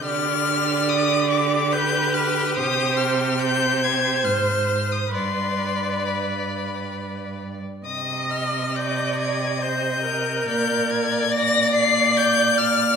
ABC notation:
X:1
M:3/4
L:1/16
Q:1/4=70
K:Cm
V:1 name="Violin"
f'4 e'2 d'2 g'2 f'2 | e'2 f'2 g'2 a'2 f'3 e' | c'4 =b6 z2 | e'2 f'2 g'2 a'2 g'4 |
g'2 a'2 b'2 c''2 g'2 f'2 |]
V:2 name="Violin"
G12- | G8 c4 | d8- d3 z | e12 |
d12 |]
V:3 name="Viola"
d8 =B4 | c4 c8 | =B8- B2 z2 | e4 d4 c2 B2- |
B4 d8 |]
V:4 name="Cello" clef=bass
D,12 | C,8 A,,4 | G,,8- G,,3 z | C,12 |
B,,12 |]